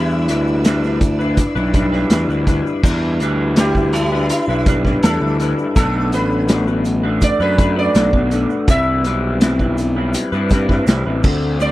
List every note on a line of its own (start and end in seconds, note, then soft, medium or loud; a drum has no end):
0.00 0.28 E2 loud
0.00 0.63 E3 medium
0.00 0.27 G3 medium
0.00 0.28 D4 medium
0.00 0.29 E4 loud
0.00 2.07 E4 medium
0.00 0.29 B4 medium
0.00 2.82 D5 medium
0.00 2.80 E5 medium
0.00 2.80 B5 medium
0.00 2.80 E6 medium
0.10 shaker soft
0.28 1.38 D2 medium
0.28 0.63 G3 medium
0.28 0.64 D4 medium
0.28 0.64 E4 medium
0.28 0.65 B4 medium
0.28 closed hi-hat medium
0.28 shaker medium
0.47 shaker soft
0.64 1.19 E3 loud
0.64 1.00 G3 medium
0.64 0.84 D4 loud
0.64 0.82 E4 loud
0.64 0.81 B4 loud
0.64 snare loud
0.64 closed hi-hat loud
0.64 shaker loud
0.82 1.00 D4 medium
0.82 1.00 E4 medium
0.82 1.00 B4 medium
0.82 snare soft
0.82 shaker soft
1.01 muted clean electric guitar stroke soft
1.01 kick medium
1.01 closed hi-hat medium
1.01 shaker medium
1.19 1.56 D4 medium
1.19 1.56 E4 medium
1.19 1.54 B4 medium
1.19 shaker soft
1.37 kick medium
1.37 closed hi-hat loud
1.37 shaker medium
1.55 2.03 B1 medium
1.55 1.73 D4 medium
1.55 1.74 E4 medium
1.55 1.74 B4 medium
1.55 shaker soft
1.73 2.10 G3 medium
1.73 1.93 D4 medium
1.73 1.92 E4 medium
1.73 1.91 B4 medium
1.73 kick medium
1.73 closed hi-hat medium
1.73 shaker medium
1.92 2.11 D4 medium
1.92 2.11 E4 medium
1.92 2.12 B4 medium
1.92 snare soft
2.10 2.26 E2 medium
2.10 2.66 E3 loud
2.10 2.46 G3 medium
2.10 2.30 D4 loud
2.10 2.29 E4 loud
2.10 2.28 B4 loud
2.10 snare loud
2.10 closed hi-hat loud
2.10 shaker medium
2.28 2.60 D2 medium
2.28 2.46 D4 medium
2.28 2.47 E4 medium
2.28 2.48 B4 medium
2.28 shaker soft
2.47 2.82 G3 medium
2.47 2.82 D4 medium
2.47 2.83 E4 medium
2.47 2.83 B4 medium
2.47 kick medium
2.47 snare soft
2.47 closed hi-hat medium
2.47 shaker medium
2.67 shaker soft
2.83 3.20 E2 loud
2.83 3.55 E3 loud
2.83 3.19 G3 loud
2.83 3.21 D4 medium
2.83 3.21 E4 loud
2.83 3.22 B4 medium
2.83 kick loud
2.83 crash loud
2.83 shaker loud
3.20 4.30 D2 medium
3.20 3.56 G3 medium
3.20 3.57 D4 medium
3.20 3.57 E4 medium
3.20 3.58 B4 medium
3.20 closed hi-hat medium
3.20 shaker medium
3.56 4.12 E3 medium
3.56 3.93 G3 medium
3.56 3.77 D4 loud
3.56 3.92 E4 medium
3.56 3.75 E4 loud
3.56 3.93 G4 loud
3.56 3.75 B4 loud
3.56 snare loud
3.56 closed hi-hat loud
3.56 shaker loud
3.75 3.94 D4 medium
3.75 3.94 E4 medium
3.75 3.95 B4 medium
3.75 kick medium
3.75 shaker soft
3.93 4.27 G3 medium
3.93 4.29 E4 medium
3.93 muted clean electric guitar stroke soft
3.93 snare soft
3.93 closed hi-hat medium
3.93 shaker medium
4.12 4.50 D4 medium
4.12 4.49 E4 medium
4.12 4.48 B4 medium
4.29 4.66 E4 loud
4.29 closed hi-hat loud
4.29 shaker loud
4.48 4.95 B1 medium
4.48 4.66 D4 medium
4.48 4.67 E4 medium
4.48 4.68 B4 medium
4.48 shaker soft
4.66 5.02 G3 medium
4.66 4.86 D4 medium
4.66 4.85 E4 medium
4.66 4.84 B4 loud
4.66 kick medium
4.66 closed hi-hat medium
4.66 shaker medium
4.85 5.03 D4 medium
4.85 5.03 E4 medium
4.85 5.04 B4 medium
4.85 kick medium
4.85 snare soft
5.03 5.19 E2 loud
5.03 5.58 E3 loud
5.03 5.38 G3 loud
5.03 5.23 D4 loud
5.03 5.21 E4 loud
5.03 5.74 A4 loud
5.03 5.21 B4 loud
5.03 snare loud
5.03 closed hi-hat loud
5.03 shaker loud
5.21 5.53 D2 medium
5.21 5.39 D4 medium
5.21 5.40 E4 medium
5.21 5.41 B4 medium
5.39 5.74 G3 medium
5.39 5.75 D4 medium
5.39 5.75 E4 medium
5.39 5.78 B4 medium
5.39 closed hi-hat medium
5.39 shaker medium
5.58 shaker soft
5.76 6.12 B1 loud
5.76 6.47 B2 medium
5.76 6.48 F#3 medium
5.76 6.11 A3 medium
5.76 6.12 D4 loud
5.76 6.12 F#4 medium
5.76 6.12 A4 loud
5.76 6.14 B4 loud
5.76 kick loud
5.76 closed hi-hat loud
5.76 shaker loud
6.12 7.22 A1 medium
6.12 6.49 A3 medium
6.12 6.49 D4 medium
6.12 6.49 F#4 medium
6.12 7.20 B4 medium
6.12 6.50 B4 medium
6.12 closed hi-hat medium
6.12 shaker medium
6.48 7.04 B2 loud
6.48 7.04 F#3 medium
6.48 6.68 A3 loud
6.48 6.67 D4 loud
6.48 6.67 F#4 medium
6.48 6.66 B4 loud
6.48 snare loud
6.48 closed hi-hat loud
6.48 shaker loud
6.67 6.85 A3 medium
6.67 6.86 D4 medium
6.67 6.86 F#4 medium
6.67 6.86 B4 medium
6.67 shaker soft
6.85 muted clean electric guitar stroke medium
6.85 closed hi-hat medium
6.85 shaker medium
7.03 7.41 A3 medium
7.03 7.40 D4 medium
7.03 7.40 F#4 medium
7.03 7.39 B4 medium
7.22 7.40 D5 medium
7.22 kick medium
7.22 closed hi-hat loud
7.22 shaker medium
7.40 7.87 F#2 medium
7.40 7.56 A3 medium
7.40 7.58 D4 medium
7.40 7.58 F#4 medium
7.40 7.59 B4 medium
7.40 7.77 B4 medium
7.40 shaker soft
7.58 7.77 A3 medium
7.58 7.77 D4 medium
7.58 7.76 F#4 medium
7.58 7.75 B4 medium
7.58 kick loud
7.58 closed hi-hat medium
7.58 shaker medium
7.76 7.94 A3 medium
7.76 7.95 D4 medium
7.76 7.95 F#4 medium
7.76 7.95 B4 medium
7.76 8.67 D5 loud
7.95 8.11 B1 loud
7.95 8.50 B2 loud
7.95 8.50 F#3 medium
7.95 8.14 A3 loud
7.95 8.13 D4 loud
7.95 8.13 F#4 loud
7.95 8.12 B4 loud
7.95 snare loud
7.95 closed hi-hat loud
7.95 shaker medium
8.13 8.45 B1 medium
8.13 8.30 A3 medium
8.13 8.31 D4 medium
8.13 8.31 F#4 medium
8.13 8.32 B4 medium
8.13 kick medium
8.31 8.66 A3 medium
8.31 8.67 D4 medium
8.31 8.67 F#4 medium
8.31 8.67 B4 medium
8.31 closed hi-hat medium
8.31 shaker medium
8.50 shaker soft
8.68 9.04 C2 loud
8.68 9.40 C3 medium
8.68 9.41 E3 medium
8.68 9.03 G3 loud
8.68 9.05 C4 loud
8.68 9.05 E4 loud
8.68 9.06 B4 loud
8.68 10.11 E5 loud
8.68 kick loud
8.68 closed hi-hat loud
8.68 shaker medium
9.04 10.14 B1 loud
9.04 9.41 G3 medium
9.04 9.42 C4 medium
9.04 9.42 E4 medium
9.04 9.42 B4 medium
9.04 closed hi-hat medium
9.04 shaker medium
9.41 9.96 C3 medium
9.41 9.97 E3 medium
9.41 9.61 G3 medium
9.41 9.61 C4 loud
9.41 9.60 E4 loud
9.41 9.59 B4 loud
9.41 snare loud
9.41 closed hi-hat loud
9.41 shaker medium
9.59 9.78 G3 medium
9.59 9.79 C4 medium
9.59 9.78 E4 medium
9.59 9.78 B4 medium
9.59 kick medium
9.59 shaker soft
9.78 muted clean electric guitar stroke soft
9.78 snare soft
9.78 closed hi-hat medium
9.78 shaker medium
9.96 10.33 G3 medium
9.96 10.33 C4 medium
9.96 10.32 E4 medium
9.96 10.31 B4 medium
10.14 closed hi-hat loud
10.14 shaker medium
10.32 10.80 G2 medium
10.32 10.49 G3 medium
10.32 10.51 C4 medium
10.32 10.51 E4 medium
10.32 10.52 B4 medium
10.32 shaker soft
10.50 10.69 G3 medium
10.50 10.69 C4 medium
10.50 10.68 E4 medium
10.50 10.67 B4 medium
10.50 kick medium
10.50 snare soft
10.50 closed hi-hat medium
10.50 shaker medium
10.68 10.87 G3 medium
10.68 10.87 C4 medium
10.68 10.88 E4 medium
10.68 10.88 B4 medium
10.68 kick medium
10.68 snare soft
10.87 11.03 C2 medium
10.87 11.21 C3 loud
10.87 11.22 E3 loud
10.87 11.07 G3 loud
10.87 11.06 C4 loud
10.87 11.06 E4 loud
10.87 11.05 B4 loud
10.87 snare loud
10.87 closed hi-hat loud
10.87 shaker medium
11.06 11.21 A1 medium
11.06 11.23 G3 medium
11.06 11.23 C4 medium
11.06 11.22 E4 medium
11.06 11.22 B4 medium
11.23 11.71 D2 loud
11.23 11.59 D3 medium
11.23 11.59 A3 loud
11.23 11.60 C4 loud
11.23 11.60 F#4 loud
11.23 11.61 C5 loud
11.23 kick loud
11.23 crash loud
11.23 shaker medium
11.60 11.71 D3 medium
11.60 11.71 A3 medium
11.60 11.71 C4 medium
11.60 11.71 F#4 loud
11.60 11.71 C5 loud
11.60 11.71 D5 loud
11.60 shaker medium